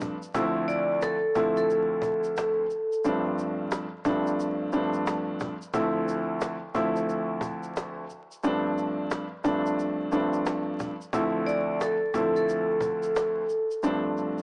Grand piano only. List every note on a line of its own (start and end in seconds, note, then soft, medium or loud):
0.00 0.13 G2 medium
0.00 0.13 F3 medium
0.00 0.14 A3 medium
0.00 0.14 C4 medium
0.00 0.14 D4 loud
0.34 1.14 D2 loud
0.34 1.15 F3 medium
0.34 1.15 A3 medium
0.34 1.15 C4 medium
0.34 1.15 E4 loud
1.35 2.62 D2 medium
1.35 2.62 F3 medium
1.35 2.62 A3 medium
1.35 2.62 C4 medium
1.35 2.63 E4 loud
3.04 3.84 G2 medium
3.04 3.84 F3 medium
3.04 3.85 A3 medium
3.04 3.85 C4 medium
3.04 3.85 D4 loud
4.05 4.69 G2 medium
4.05 4.69 F3 medium
4.05 4.69 A3 medium
4.05 4.69 C4 medium
4.05 4.69 D4 loud
4.73 5.53 G2 medium
4.73 5.53 F3 medium
4.73 5.53 A3 medium
4.73 5.53 C4 medium
4.73 5.53 D4 loud
5.74 6.54 D2 medium
5.74 6.54 F3 medium
5.74 6.54 A3 medium
5.74 6.54 C4 medium
5.74 6.54 E4 loud
6.75 8.01 D2 medium
6.75 8.02 F3 medium
6.75 8.02 A3 medium
6.75 8.02 C4 medium
6.75 8.02 E4 loud
8.44 9.24 G2 medium
8.44 9.24 F3 medium
8.44 9.24 A3 medium
8.44 9.24 C4 medium
8.44 9.24 D4 loud
9.44 10.08 G2 medium
9.44 10.08 F3 medium
9.44 10.08 A3 medium
9.44 10.08 C4 medium
9.44 10.08 D4 loud
10.12 10.92 G2 medium
10.12 10.92 F3 medium
10.12 10.92 A3 medium
10.12 10.92 C4 medium
10.12 10.92 D4 loud
11.13 11.93 D2 medium
11.13 11.93 F3 medium
11.13 11.93 A3 medium
11.13 11.93 C4 medium
11.13 11.94 E4 loud
12.14 13.41 D2 medium
12.14 13.41 F3 medium
12.14 13.41 A3 medium
12.14 13.41 C4 medium
12.14 13.41 E4 loud
13.83 14.42 G2 medium
13.83 14.42 F3 medium
13.83 14.42 A3 medium
13.83 14.42 C4 medium
13.83 14.42 D4 loud